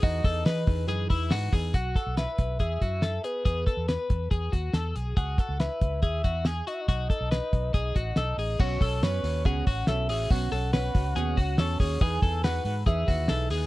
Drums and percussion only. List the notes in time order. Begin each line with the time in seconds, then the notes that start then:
0.03 kick, hi-hat pedal, open hi-hat
0.24 kick, hi-hat pedal, open hi-hat
0.46 snare, hi-hat pedal, open hi-hat
0.67 kick, hi-hat pedal, open hi-hat
0.88 hi-hat pedal, open hi-hat
1.10 kick, hi-hat pedal, open hi-hat
1.31 snare, hi-hat pedal, open hi-hat
1.53 kick, hi-hat pedal, open hi-hat
1.74 kick, closed hi-hat
1.95 kick, closed hi-hat
2.17 snare, closed hi-hat
2.38 kick, closed hi-hat
2.60 kick, closed hi-hat
2.82 kick, closed hi-hat
3.02 snare, closed hi-hat
3.24 closed hi-hat
3.46 kick, closed hi-hat
3.67 kick, closed hi-hat
3.89 snare, closed hi-hat
4.10 kick, closed hi-hat
4.31 kick, closed hi-hat
4.53 kick, closed hi-hat
4.73 snare, closed hi-hat
4.96 closed hi-hat
5.17 kick, closed hi-hat
5.38 kick, closed hi-hat
5.60 snare, closed hi-hat
5.81 kick, closed hi-hat
6.02 kick, closed hi-hat
6.24 kick, closed hi-hat
6.45 snare, closed hi-hat
6.67 closed hi-hat
6.88 kick, closed hi-hat
7.10 kick, closed hi-hat
7.32 snare, closed hi-hat
7.53 kick, closed hi-hat
7.74 kick, closed hi-hat
7.96 kick, closed hi-hat
8.16 snare, closed hi-hat
8.39 open hi-hat
8.59 kick, crash
8.81 kick, hi-hat pedal, open hi-hat
9.03 snare, hi-hat pedal, open hi-hat
9.24 hi-hat pedal, open hi-hat
9.45 kick, hi-hat pedal, open hi-hat
9.67 kick, hi-hat pedal, open hi-hat
9.87 snare, hi-hat pedal, open hi-hat
10.09 hi-hat pedal, open hi-hat
10.31 kick, hi-hat pedal, open hi-hat
10.52 hi-hat pedal, open hi-hat
10.73 snare, hi-hat pedal, open hi-hat
10.95 kick, hi-hat pedal, open hi-hat
11.16 hi-hat pedal, open hi-hat
11.37 kick, hi-hat pedal, open hi-hat
11.58 snare, hi-hat pedal, open hi-hat
11.80 kick, hi-hat pedal, open hi-hat
12.01 kick, hi-hat pedal, open hi-hat
12.22 kick, hi-hat pedal, open hi-hat
12.44 snare, hi-hat pedal, open hi-hat
12.65 hi-hat pedal, open hi-hat
12.86 kick, hi-hat pedal, open hi-hat
13.08 kick, hi-hat pedal, open hi-hat
13.28 snare, hi-hat pedal, open hi-hat
13.50 hi-hat pedal, open hi-hat